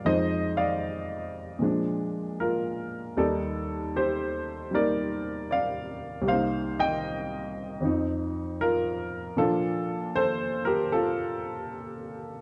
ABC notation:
X:1
M:4/4
L:1/8
Q:"Swing" 1/4=77
K:Bb
V:1 name="Grand piano"
[ce] [df]2 z3 [FB]2 | [EA]2 [Gc]2 [Bd]2 [df]2 | [cf] [eg]2 z3 [FB]2 | [FA]2 [Ac] [GB] [FA]4 |]
V:2 name="Grand piano" clef=bass
[F,,F,_A,E]4 [B,,F,A,D]4 | [E,,E,G,d]4 [G,B,E]4 | [C,,C,B,E]4 [F,,F,CE]4 | [B,,F,B,D]8 |]